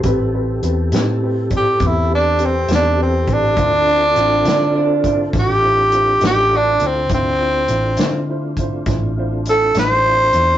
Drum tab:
HH |x-xx-xx-xx-x|x-xx-xx-xx-x|x-xx-xx-xx-x|
SD |---o-----o--|---o--o--o--|---o--o--o--|
BD |o----oo----o|o----oo-----|o----oo-----|